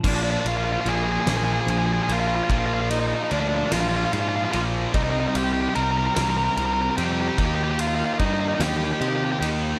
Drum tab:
CC |x-----|------|------|------|
RD |-xxxxx|xxxxxx|xxxxxx|xxxxxx|
SD |---o--|---o--|---o--|---o--|
BD |o-----|o-----|o-----|o-o---|